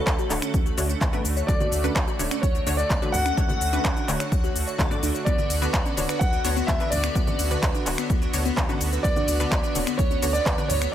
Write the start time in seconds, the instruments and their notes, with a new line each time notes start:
Already playing: supersaw synth D3 A3 F#4, grand piano A4, digital synth lead A4
0.07 analog synth bass D2, synth arpeggio sound C#5, finger snap, kick, clap, closed hi-hat, shaker
0.19 synth arpeggio sound F#4, closed hi-hat, shaker
0.30 analog synth bass D1, synth pluck D3 A3 D4 F#4 C#5, clap, open hi-hat, shaker
0.42 synth arpeggio sound C#4, finger snap, closed hi-hat, shaker
0.54 analog synth bass D2, kick, closed hi-hat, shaker
0.66 synth arpeggio sound F#4, closed hi-hat, shaker
0.78 analog synth bass D2, synth pluck D3 A3 D4 F#4 C#5, open hi-hat, shaker
0.89 synth arpeggio sound C#4, closed hi-hat, shaker
1.01 analog synth bass D2, synth arpeggio sound C#4, kick, clap, closed hi-hat, high conga, shaker
1.13 synth pluck D3 A3 D4 F#4 B4, synth arpeggio sound D4, closed hi-hat, low conga, shaker
1.25 analog synth bass D2, open hi-hat, shaker
1.37 synth arpeggio sound C#5, closed hi-hat, shaker
1.47 analog synth bass D2, synth pluck D3 A3 D4 F#4 D5, synth arpeggio sound C#5, grand piano D5, digital synth lead D5, kick, closed hi-hat, shaker
1.60 synth arpeggio sound F#4, closed hi-hat, high conga, low conga, shaker
1.72 analog synth bass D2, open hi-hat, shaker
1.84 synth pluck D3 A3 D4 F#4 B4, synth arpeggio sound C#4, closed hi-hat, shaker
1.96 analog synth bass D2, synth arpeggio sound C#4, finger snap, kick, clap, closed hi-hat, shaker
2.08 synth arpeggio sound F#4, closed hi-hat, shaker
2.19 analog synth bass D1, synth pluck D3 A3 D4 F#4 C#5, open hi-hat, high conga, shaker
2.31 synth arpeggio sound C#4, finger snap, closed hi-hat, shaker
2.41 analog synth bass D2, digital synth lead C#5, grand piano C#5, kick, closed hi-hat, shaker
2.55 synth arpeggio sound D4, closed hi-hat, shaker
2.67 analog synth bass D2, synth pluck D3 A3 D4 F#4 C#5, open hi-hat, shaker
2.77 synth arpeggio sound C#5, digital synth lead D5, grand piano D5, closed hi-hat, shaker
2.90 analog synth bass D2, kick, clap, closed hi-hat, high conga, shaker
3.02 synth pluck D3 A3 D4 F#4 B4, synth arpeggio sound F#4, closed hi-hat, shaker
3.12 analog synth bass D2, digital synth lead F#5, grand piano F#5, open hi-hat, low conga, shaker
3.26 synth arpeggio sound C#4, finger snap, closed hi-hat, shaker
3.37 analog synth bass D2, synth pluck D3 A3 D4 F#4 C#5, synth arpeggio sound C#4, kick, closed hi-hat, shaker
3.48 synth arpeggio sound F#4, closed hi-hat, high conga, low conga, shaker
3.61 analog synth bass D2, open hi-hat, shaker
3.73 synth pluck D3 A3 D4 F#4 B4, synth arpeggio sound C#4, closed hi-hat, shaker
3.85 analog synth bass D2, synth arpeggio sound C#4, finger snap, kick, clap, closed hi-hat, shaker
3.97 synth arpeggio sound D4, closed hi-hat, shaker
4.08 analog synth bass D1, synth pluck D3 A3 D4 F#4 C#5, clap, open hi-hat, shaker
4.20 synth arpeggio sound C#5, finger snap, closed hi-hat, shaker
4.32 analog synth bass D2, synth arpeggio sound C#5, kick, closed hi-hat, shaker
4.44 synth arpeggio sound F#4, closed hi-hat, shaker
4.56 analog synth bass D2, open hi-hat, shaker
4.67 synth arpeggio sound C#5, closed hi-hat, shaker
4.78 analog synth bass D2, synth pluck D3 A3 D4 F#4 C#5, synth arpeggio sound A4, kick, clap, closed hi-hat, high conga, shaker
4.90 synth pluck D3 A3 D4 F#4 D5, synth arpeggio sound A4, closed hi-hat, low conga, shaker
5.03 analog synth bass D2, synth arpeggio sound D4, open hi-hat, shaker
5.15 synth arpeggio sound C#5, closed hi-hat, shaker
5.25 analog synth bass D2, synth pluck D3 B3 D4 F#4 D5, synth arpeggio sound B3, supersaw synth B3, digital synth lead D5, grand piano D5, kick, closed hi-hat, shaker
5.38 synth arpeggio sound D4, closed hi-hat, high conga, low conga, shaker
5.50 analog synth bass D2, open hi-hat, ride, shaker
5.62 synth pluck D3 B3 D4 F#4 B4, synth arpeggio sound B3, closed hi-hat, shaker
5.74 analog synth bass D2, finger snap, kick, clap, closed hi-hat, shaker
5.86 synth arpeggio sound C#4, closed hi-hat, shaker
5.97 analog synth bass D1, synth pluck D3 B3 D4 F#4 C#5, open hi-hat, ride, high conga, shaker
6.09 synth arpeggio sound B4, finger snap, closed hi-hat, shaker
6.19 analog synth bass D2, synth arpeggio sound B4, grand piano F#5, digital synth lead F#5, kick, closed hi-hat, shaker
6.33 synth arpeggio sound D4, closed hi-hat, shaker
6.45 analog synth bass D2, synth pluck D3 B3 D4 F#4 C#5, open hi-hat, ride, shaker
6.56 synth arpeggio sound B3, closed hi-hat, shaker
6.67 analog synth bass D2, digital synth lead E5, grand piano E5, kick, clap, closed hi-hat, high conga, shaker
6.80 synth pluck D3 B3 D4 F#4 B4, synth arpeggio sound D4, closed hi-hat, shaker
6.90 analog synth bass D2, digital synth lead D5, grand piano D5, open hi-hat, ride, low conga, shaker
7.04 synth arpeggio sound B3, finger snap, closed hi-hat, shaker
7.15 analog synth bass D2, synth pluck D3 B3 D4 F#4 D5, synth arpeggio sound B3, kick, closed hi-hat, shaker
7.27 synth arpeggio sound C#4, closed hi-hat, high conga, low conga, shaker
7.39 analog synth bass D2, open hi-hat, ride, shaker
7.51 synth pluck D3 B3 D4 F#4 B4, synth arpeggio sound B4, closed hi-hat, shaker
7.63 analog synth bass D2, synth arpeggio sound B4, finger snap, kick, clap, closed hi-hat, shaker
7.75 synth arpeggio sound D4, closed hi-hat, shaker
7.86 analog synth bass D1, synth pluck D3 B3 D4 F#4 C#5, clap, open hi-hat, ride, shaker
7.98 synth arpeggio sound B3, finger snap, closed hi-hat, shaker
8.10 analog synth bass D2, kick, closed hi-hat, shaker
8.22 synth arpeggio sound D4, closed hi-hat, shaker
8.33 analog synth bass D2, synth pluck D3 B3 D4 F#4 C#5, open hi-hat, ride, shaker
8.45 synth arpeggio sound B3, closed hi-hat, shaker
8.57 analog synth bass D2, kick, clap, closed hi-hat, high conga, shaker
8.68 synth pluck D3 B3 D4 F#4 B4, synth arpeggio sound C#4, closed hi-hat, low conga, shaker
8.81 analog synth bass D2, open hi-hat, ride, shaker
8.93 synth arpeggio sound B4, closed hi-hat, shaker
9.03 analog synth bass D2, synth pluck D3 B3 D4 F#4 D5, synth arpeggio sound B4, grand piano D5, digital synth lead D5, kick, closed hi-hat, shaker
9.16 synth arpeggio sound D4, closed hi-hat, high conga, low conga, shaker
9.28 analog synth bass D2, open hi-hat, ride, shaker
9.40 synth pluck D3 B3 D4 F#4 B4, synth arpeggio sound B3, closed hi-hat, shaker
9.52 analog synth bass D2, synth arpeggio sound B3, finger snap, kick, clap, closed hi-hat, shaker
9.63 synth arpeggio sound D4, closed hi-hat, shaker
9.75 analog synth bass D1, synth pluck D3 B3 D4 F#4 C#5, open hi-hat, ride, high conga, shaker
9.87 synth arpeggio sound B3, finger snap, closed hi-hat, shaker
9.97 analog synth bass D2, digital synth lead C#5, grand piano C#5, kick, closed hi-hat, shaker
10.11 synth arpeggio sound C#4, closed hi-hat, shaker
10.22 analog synth bass D2, synth pluck D3 B3 D4 F#4 C#5, open hi-hat, ride, shaker
10.33 synth arpeggio sound B4, digital synth lead D5, grand piano D5, closed hi-hat, shaker
10.46 analog synth bass D2, synth arpeggio sound B4, kick, clap, closed hi-hat, high conga, shaker
10.58 synth pluck D3 B3 D4 F#4 B4, synth arpeggio sound D4, closed hi-hat, shaker
10.68 analog synth bass D2, grand piano C#5, digital synth lead C#5, open hi-hat, ride, low conga, shaker
10.82 synth arpeggio sound B3, finger snap, shaker